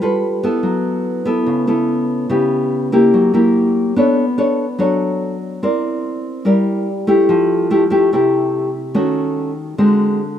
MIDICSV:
0, 0, Header, 1, 2, 480
1, 0, Start_track
1, 0, Tempo, 415512
1, 746, Time_signature, 4, 2, 24, 8
1, 12001, End_track
2, 0, Start_track
2, 0, Title_t, "Nylon-string guitar"
2, 0, Program_c, 0, 24
2, 0, Note_on_c, 0, 55, 60
2, 19, Note_on_c, 0, 65, 61
2, 25, Note_on_c, 0, 69, 59
2, 32, Note_on_c, 0, 71, 64
2, 464, Note_off_c, 0, 65, 0
2, 467, Note_off_c, 0, 69, 0
2, 471, Note_off_c, 0, 71, 0
2, 501, Note_on_c, 0, 59, 66
2, 505, Note_on_c, 0, 64, 56
2, 513, Note_on_c, 0, 69, 65
2, 722, Note_off_c, 0, 55, 0
2, 727, Note_on_c, 0, 54, 64
2, 1425, Note_off_c, 0, 59, 0
2, 1425, Note_off_c, 0, 64, 0
2, 1430, Note_off_c, 0, 69, 0
2, 1450, Note_on_c, 0, 59, 66
2, 1457, Note_on_c, 0, 64, 60
2, 1464, Note_on_c, 0, 69, 60
2, 1672, Note_off_c, 0, 54, 0
2, 1691, Note_on_c, 0, 49, 71
2, 1900, Note_off_c, 0, 59, 0
2, 1901, Note_off_c, 0, 64, 0
2, 1906, Note_off_c, 0, 69, 0
2, 1932, Note_on_c, 0, 59, 53
2, 1938, Note_on_c, 0, 64, 58
2, 1942, Note_on_c, 0, 69, 59
2, 2620, Note_off_c, 0, 59, 0
2, 2622, Note_off_c, 0, 64, 0
2, 2624, Note_off_c, 0, 69, 0
2, 2633, Note_off_c, 0, 49, 0
2, 2651, Note_on_c, 0, 49, 67
2, 2653, Note_on_c, 0, 59, 53
2, 2659, Note_on_c, 0, 64, 54
2, 2663, Note_on_c, 0, 67, 54
2, 3338, Note_off_c, 0, 59, 0
2, 3343, Note_off_c, 0, 64, 0
2, 3344, Note_off_c, 0, 67, 0
2, 3377, Note_on_c, 0, 58, 70
2, 3382, Note_on_c, 0, 64, 61
2, 3386, Note_on_c, 0, 67, 65
2, 3593, Note_off_c, 0, 49, 0
2, 3624, Note_on_c, 0, 54, 67
2, 3822, Note_off_c, 0, 58, 0
2, 3823, Note_off_c, 0, 64, 0
2, 3826, Note_off_c, 0, 67, 0
2, 3853, Note_on_c, 0, 58, 57
2, 3861, Note_on_c, 0, 64, 57
2, 3865, Note_on_c, 0, 67, 67
2, 4540, Note_off_c, 0, 58, 0
2, 4541, Note_off_c, 0, 64, 0
2, 4545, Note_off_c, 0, 67, 0
2, 4559, Note_off_c, 0, 54, 0
2, 4579, Note_on_c, 0, 59, 71
2, 4580, Note_on_c, 0, 62, 57
2, 4589, Note_on_c, 0, 69, 48
2, 4593, Note_on_c, 0, 73, 58
2, 4890, Note_off_c, 0, 62, 0
2, 4895, Note_off_c, 0, 69, 0
2, 4896, Note_off_c, 0, 73, 0
2, 5057, Note_on_c, 0, 62, 64
2, 5063, Note_on_c, 0, 69, 58
2, 5066, Note_on_c, 0, 73, 64
2, 5370, Note_off_c, 0, 62, 0
2, 5371, Note_off_c, 0, 69, 0
2, 5371, Note_off_c, 0, 73, 0
2, 5517, Note_off_c, 0, 59, 0
2, 5528, Note_on_c, 0, 54, 66
2, 5535, Note_on_c, 0, 62, 51
2, 5540, Note_on_c, 0, 69, 58
2, 5542, Note_on_c, 0, 73, 55
2, 6183, Note_off_c, 0, 62, 0
2, 6183, Note_off_c, 0, 69, 0
2, 6187, Note_off_c, 0, 73, 0
2, 6472, Note_off_c, 0, 54, 0
2, 6500, Note_on_c, 0, 60, 61
2, 6501, Note_on_c, 0, 64, 54
2, 6506, Note_on_c, 0, 70, 53
2, 6511, Note_on_c, 0, 74, 58
2, 7423, Note_off_c, 0, 64, 0
2, 7424, Note_off_c, 0, 70, 0
2, 7428, Note_off_c, 0, 74, 0
2, 7437, Note_off_c, 0, 60, 0
2, 7450, Note_on_c, 0, 64, 55
2, 7454, Note_on_c, 0, 55, 69
2, 7458, Note_on_c, 0, 70, 54
2, 7466, Note_on_c, 0, 74, 59
2, 7933, Note_off_c, 0, 64, 0
2, 7936, Note_off_c, 0, 70, 0
2, 7938, Note_off_c, 0, 74, 0
2, 8170, Note_on_c, 0, 57, 65
2, 8176, Note_on_c, 0, 64, 65
2, 8183, Note_on_c, 0, 67, 67
2, 8396, Note_off_c, 0, 55, 0
2, 8421, Note_on_c, 0, 53, 74
2, 8858, Note_off_c, 0, 57, 0
2, 8861, Note_off_c, 0, 64, 0
2, 8864, Note_off_c, 0, 67, 0
2, 8901, Note_on_c, 0, 57, 60
2, 8907, Note_on_c, 0, 64, 66
2, 8910, Note_on_c, 0, 67, 69
2, 9043, Note_off_c, 0, 57, 0
2, 9045, Note_off_c, 0, 64, 0
2, 9047, Note_off_c, 0, 67, 0
2, 9130, Note_on_c, 0, 57, 65
2, 9134, Note_on_c, 0, 64, 67
2, 9143, Note_on_c, 0, 67, 68
2, 9338, Note_off_c, 0, 57, 0
2, 9340, Note_off_c, 0, 64, 0
2, 9344, Note_off_c, 0, 67, 0
2, 9358, Note_off_c, 0, 53, 0
2, 9388, Note_on_c, 0, 48, 69
2, 9390, Note_on_c, 0, 57, 61
2, 9394, Note_on_c, 0, 64, 57
2, 9403, Note_on_c, 0, 67, 63
2, 10033, Note_off_c, 0, 57, 0
2, 10033, Note_off_c, 0, 64, 0
2, 10035, Note_off_c, 0, 67, 0
2, 10322, Note_off_c, 0, 48, 0
2, 10332, Note_on_c, 0, 51, 67
2, 10335, Note_on_c, 0, 57, 58
2, 10336, Note_on_c, 0, 61, 59
2, 10341, Note_on_c, 0, 66, 55
2, 10982, Note_off_c, 0, 57, 0
2, 10985, Note_off_c, 0, 61, 0
2, 10988, Note_off_c, 0, 66, 0
2, 11275, Note_off_c, 0, 51, 0
2, 11301, Note_on_c, 0, 50, 66
2, 11303, Note_on_c, 0, 56, 59
2, 11304, Note_on_c, 0, 60, 59
2, 11310, Note_on_c, 0, 66, 58
2, 11779, Note_off_c, 0, 56, 0
2, 11782, Note_off_c, 0, 60, 0
2, 11784, Note_off_c, 0, 66, 0
2, 12001, Note_off_c, 0, 50, 0
2, 12001, End_track
0, 0, End_of_file